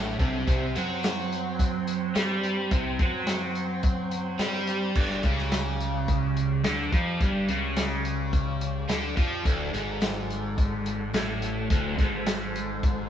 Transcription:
Already playing: fingered electric bass A1, overdriven electric guitar A2, tonewheel organ F#3 D4 F#4 A4
0.19 fingered electric bass C2, overdriven electric guitar C3, kick, closed hi-hat
0.47 fingered electric bass C2, overdriven electric guitar C3, tonewheel organ C4 C5 G5, kick, closed hi-hat
0.75 fingered electric bass F#2, overdriven electric guitar F#3, snare, closed hi-hat
1.03 snare, closed hi-hat, tambourine
1.32 closed hi-hat
1.59 kick, closed hi-hat
1.87 closed hi-hat
2.15 fingered electric bass G2, overdriven electric guitar G3, snare, closed hi-hat, tambourine
2.43 closed hi-hat
2.71 fingered electric bass C2, overdriven electric guitar C3, kick, closed hi-hat
2.99 fingered electric bass F#2, overdriven electric guitar F#3, kick, closed hi-hat
3.27 snare, closed hi-hat, tambourine
3.55 closed hi-hat
3.83 kick, closed hi-hat
4.11 closed hi-hat
4.39 fingered electric bass G2, overdriven electric guitar G3, snare, closed hi-hat, tambourine
4.54 snare
4.67 closed hi-hat
4.95 fingered electric bass G1, overdriven electric guitar G2, tonewheel organ G4 D5, kick, crash
5.10 snare
5.23 fingered electric bass C#2, overdriven electric guitar C#3, kick, closed hi-hat
5.38 snare
5.52 snare, closed hi-hat, tambourine
5.80 closed hi-hat
6.08 kick, closed hi-hat
6.37 closed hi-hat
6.64 fingered electric bass D2, overdriven electric guitar D3, snare, closed hi-hat, tambourine
6.92 fingered electric bass F2, overdriven electric guitar F3, kick, closed hi-hat
7.20 fingered electric bass G1, overdriven electric guitar G2, kick, closed hi-hat
7.48 fingered electric bass C#2, overdriven electric guitar C#3, closed hi-hat
7.76 snare, closed hi-hat, tambourine
8.05 closed hi-hat
8.33 kick, closed hi-hat
8.61 closed hi-hat
8.88 fingered electric bass D2, overdriven electric guitar D3, snare, closed hi-hat, tambourine
9.17 fingered electric bass F2, overdriven electric guitar F3, kick, closed hi-hat
9.45 fingered electric bass D1, overdriven electric guitar D2, tonewheel organ F#4 A4, kick, closed hi-hat
9.73 fingered electric bass G#1, overdriven electric guitar G#2, closed hi-hat
10.01 snare, closed hi-hat, tambourine
10.30 closed hi-hat
10.58 kick, closed hi-hat
10.86 closed hi-hat
11.14 fingered electric bass A1, overdriven electric guitar A2, snare, closed hi-hat, tambourine
11.42 closed hi-hat
11.70 fingered electric bass D1, overdriven electric guitar D2, tonewheel organ C5, kick, closed hi-hat
11.99 fingered electric bass G#1, overdriven electric guitar G#2, kick, snare, closed hi-hat
12.26 snare, closed hi-hat, tambourine
12.56 closed hi-hat
12.83 kick, closed hi-hat

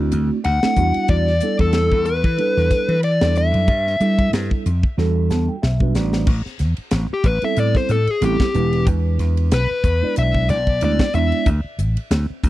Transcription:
Already playing: tine electric piano A3 C4 D4 E4 F#4
0.12 slap bass D2, hi-hat pedal, ride
0.44 slap bass D2, lead electric guitar F#5, flute F#5, ride
0.63 tine electric piano A3 C4 D4 E4 A4, snare
0.76 slap bass E2, tine electric piano G3 B3 D4 E4 F#4, kick, hi-hat pedal, ride
0.94 ride
1.08 slap bass E2, lead electric guitar D5, flute D5, kick, ride
1.27 snare
1.40 tine electric piano G3 B3 D4 E4 A4, hi-hat pedal, ride
1.59 slap bass E2, flute A4, lead electric guitar A4, kick, ride
1.73 snare, ride
1.92 slap bass E2, kick
2.05 lead electric guitar B4, flute B4, hi-hat pedal, ride
2.24 slap bass E3, kick, ride
2.38 tine electric piano G3 B3 D4 E4 A4, ride
2.57 slap bass E2, snare
2.71 kick, snare, hi-hat pedal, ride
2.89 slap bass E3, ride
3.03 flute D5, lead electric guitar D5, ride
3.21 slap bass E2, tine electric piano G3 B3 D4 E4 A4, snare
3.35 flute E5, lead electric guitar E5, hi-hat pedal, ride
3.54 slap bass F#2, ride
3.68 slap bass G2, kick, ride
3.87 snare
4.00 tine electric piano G3 B3 D4 E4 A4, slap bass G3, hi-hat pedal, ride
4.19 kick, ride
4.33 slap bass G2, snare, ride
4.51 kick
4.66 slap bass F2, hi-hat pedal, ride
4.83 kick
4.98 slap bass E2, tine electric piano G3 B3 D4 F#4 A4, snare
5.30 slap bass E2, tine electric piano A5, snare, hi-hat pedal
5.49 tine electric piano G5
5.62 slap bass B1, tine electric piano E5, snare
5.80 tine electric piano G3 B3 D4 F#4 B4, kick
5.95 slap bass A1, tine electric piano D5, snare, hi-hat pedal
6.13 snare
6.27 slap bass A1, kick, crash
6.46 muted slap bass stroke, snare
6.59 slap bass E2, snare, hi-hat pedal, ride
6.77 muted slap bass stroke, ride
6.91 slap bass A1, snare, hi-hat pedal, ride
7.14 lead electric guitar G4
7.24 slap bass A1, lead electric guitar B4, kick, hi-hat pedal, ride
7.42 tine electric piano G3 B3 C4 E4 A4, lead electric guitar E5, ride
7.56 slap bass A2, lead electric guitar D5, hi-hat pedal, ride
7.75 lead electric guitar C5, muted slap bass stroke, kick, snare
7.89 slap bass A2, lead electric guitar A4, hi-hat pedal, ride
8.07 lead electric guitar G#4, muted slap bass stroke, ride
8.21 slap bass A1, tine electric piano G3 B3 C4 E4 A4, lead electric guitar G4, hi-hat pedal, ride
8.40 kick, snare
8.54 slap bass E1, tine electric piano G#3 B3 D4 E4 B4, hi-hat pedal, ride
8.73 ride
8.87 slap bass E2, kick, hi-hat pedal, ride
9.19 slap bass E2, snare, hi-hat pedal, ride
9.37 ride
9.51 slap bass B1, lead electric guitar B4, snare, hi-hat pedal, ride
9.84 slap bass E2, kick, hi-hat pedal, ride
10.02 tine electric piano G#3 B3 D4 E4 D5, muted slap bass stroke
10.16 slap bass B1, lead electric guitar E5, hi-hat pedal, ride
10.34 kick
10.49 slap bass B1, lead electric guitar D5, snare, hi-hat pedal, ride
10.67 kick
10.81 slap bass D2, tine electric piano G#3 B3 D4 E4 D5, lead electric guitar D5, hi-hat pedal, ride
10.99 muted slap bass stroke, kick, snare
11.13 slap bass E2, tine electric piano G#3 B3 D4 E4 D5, lead electric guitar E5, hi-hat pedal, ride
11.32 ride
11.46 slap bass D2, kick, hi-hat pedal, ride
11.64 muted slap bass stroke
11.79 slap bass A1, hi-hat pedal, ride
11.96 muted slap bass stroke, ride
12.11 slap bass D2, snare, hi-hat pedal, ride
12.44 slap bass D2, kick, hi-hat pedal, ride

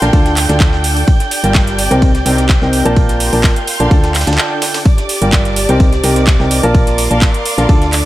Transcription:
Already playing: string section A#4 F5 C6, violin section G5 G6
0.02 fm bass A#1, grand piano D3 F4 A#4 D5 A5, snare, closed hi-hat
0.13 fm bass D2, grand piano D3 F4 A4 D5 A5, string section D4, kick, ride
0.26 snare, closed hi-hat
0.37 clap, open hi-hat, ride
0.42 string section A4 D5
0.49 fm bass D2, grand piano D3 F4 A4 D5 A5, snare, closed hi-hat
0.60 kick, snare, clap, ride
0.73 snare
0.84 open hi-hat, ride
0.97 open hi-hat, ride
1.08 string section G4, kick, ride
1.20 snare, closed hi-hat
1.31 open hi-hat, ride
1.40 fm bass G1, grand piano G3 F4 A#4 D5 G5, string section A5, closed hi-hat
1.55 kick, snare, clap, ride
1.67 snare, closed hi-hat
1.78 string section C4, open hi-hat, ride
1.91 fm bass C2, grand piano C3 D#4 A#4 C5 G5, closed hi-hat
2.02 kick, ride
2.15 snare, closed hi-hat
2.26 fm bass C2, grand piano C3 D#4 A#4 C5 G5, open hi-hat, ride
2.38 snare, closed hi-hat
2.49 kick, snare, clap, ride
2.62 fm bass C2, grand piano C3 D#4 A#4 C5 G5, snare
2.73 open hi-hat, ride
2.85 fm bass A#1, grand piano A#3 F4 A#4 D5 A5, closed hi-hat
2.96 string section A#4, kick, ride
3.09 snare, closed hi-hat
3.20 string section C6, open hi-hat, ride
3.33 fm bass A#1, grand piano A#3 F4 A#4 D5 A5, open hi-hat
3.40 string section F5
3.44 kick, snare, clap, ride
3.56 closed hi-hat, ride
3.67 open hi-hat, ride
3.80 fm bass A#1, grand piano D3 F4 A#4 D5 A5, closed hi-hat
3.91 fm bass D2, grand piano D3 F4 A4 D5 A5, string section D4, kick, ride
4.04 snare, closed hi-hat
4.15 snare, clap, open hi-hat, ride
4.21 snare, ride
4.26 fm bass D2, grand piano D3 F4 A4 D5 A5, string section A4, snare, closed hi-hat, ride
4.33 string section D5, snare, ride
4.38 clap, ride
4.62 snare, open hi-hat, ride
4.74 snare, open hi-hat, ride
4.85 string section G4, violin section D5 D6, kick, ride
4.98 snare, closed hi-hat
5.09 open hi-hat, ride
5.18 fm bass G1, grand piano G3 F4 A#4 D5 G5, string section A5, closed hi-hat
5.33 kick, snare, clap, ride
5.45 snare, closed hi-hat
5.56 string section C4, open hi-hat, ride
5.69 fm bass C2, grand piano C3 D#4 A#4 C5 G5, closed hi-hat
5.80 kick, ride
5.93 snare, closed hi-hat
6.04 fm bass C2, grand piano C3 D#4 A#4 C5 G5, open hi-hat, ride
6.16 snare, closed hi-hat
6.27 kick, snare, clap, ride
6.40 fm bass C2, grand piano C3 D#4 A#4 C5 G5, snare
6.51 open hi-hat, ride
6.63 fm bass A#1, grand piano A#3 F4 A#4 D5 A5, closed hi-hat
6.75 string section A#4, kick, ride
6.87 string section C6, snare, closed hi-hat
6.98 open hi-hat, ride
7.10 fm bass A#1, grand piano A#3 F4 A#4 D5 A5, string section F5, closed hi-hat
7.22 kick, snare, clap, ride
7.34 closed hi-hat, ride
7.45 open hi-hat, ride
7.58 fm bass A#1, grand piano D3 F4 A#4 D5 A5, snare, closed hi-hat
7.69 fm bass D2, grand piano D3 F4 A4 D5 A5, string section D4, kick, ride
7.79 string section A4, snare, closed hi-hat
7.93 clap, open hi-hat, ride
7.99 string section D5

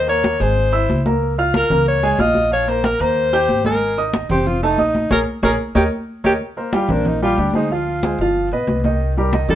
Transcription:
Already playing: upright bass D#2
0.07 grand piano A#3 A#4 A#5, alto saxophone C#5, high conga
0.24 high conga
0.40 upright bass G#1, grand piano G#3 G#4 G#5, alto saxophone C5, high conga
0.57 high conga
0.72 grand piano E4 E5 E6, high conga
0.89 upright bass C#2, high conga
1.05 grand piano A#3 A#4 A#5, high conga
1.22 high conga
1.37 grand piano F4 F5 F6, high conga
1.54 alto saxophone A#4, high conga
1.70 upright bass C#2, grand piano A#3 A#4 A#5, low conga
1.87 alto saxophone C#5, high conga
2.03 grand piano G#3 G#4 G#5, high conga
2.18 upright bass A#1, grand piano F4 F5 F6, alto saxophone D#5, high conga
2.35 high conga
2.51 grand piano F3 F4 F5, alto saxophone C#5, high conga
2.67 grand piano A#3 A#4 A#5, alto saxophone C5, high conga
2.84 alto saxophone A#4, high conga
2.99 upright bass D#2, grand piano A#3 A#4 A#5, alto saxophone C5, high conga
3.17 high conga
3.33 grand piano G4 G5 G6, high conga
3.48 upright bass G#1, high conga
3.65 grand piano G#3 G#4 G#5, alto saxophone A#4, high conga
3.81 high conga
3.97 grand piano D#4 D#5 D#6, high conga
4.13 high conga
4.29 upright bass F1, grand piano C4 C5 C6, alto saxophone G4, low conga
4.46 alto saxophone F4, high conga, low conga
4.63 grand piano A3 A4 A5, alto saxophone D#4, high conga
4.78 upright bass A#1, grand piano D#4 D#5 D#6, high conga
4.95 high conga
5.11 upright bass A#1, grand piano G#4 A#4 C#5, alto saxophone A#4, high conga
5.43 upright bass A#1, grand piano G#4 A#4 C#5, alto saxophone A#4, high conga
5.75 upright bass D#2, alto saxophone G4, grand piano A#4 C#5 D#5, high conga
6.24 upright bass D#2, alto saxophone G4, grand piano A#4 C#5 D#5, high conga
6.41 high conga
6.57 grand piano A#3 A#4 C5, high conga
6.73 grand piano G3 G4 G5, alto saxophone F4, high conga
6.89 upright bass A#1, grand piano A#3 A#4 C5, alto saxophone D4, low conga
7.05 alto saxophone D#4, high conga, low conga
7.21 grand piano G3 G4 G5, alto saxophone F4, high conga
7.37 upright bass D2, alto saxophone D4, high conga
7.54 grand piano G#3 G#4 C5, alto saxophone D#4, high conga
7.70 grand piano F3 F4 F5, alto saxophone F4, high conga
7.87 high conga
8.03 grand piano G#3 G#4 C5, high conga
8.18 upright bass G1, grand piano F3 F4 F5, high conga
8.36 high conga
8.51 upright bass A#1, grand piano B3 B4 D#5, high conga
8.67 upright bass C2, high conga
8.84 grand piano D#3 D#4 D#5, high conga
9.01 high conga
9.17 grand piano G3 G4 A#4, high conga
9.33 grand piano D#3 D#4 D#5, high conga
9.48 upright bass G2, grand piano G3 G4 A#4, alto saxophone A4, low conga

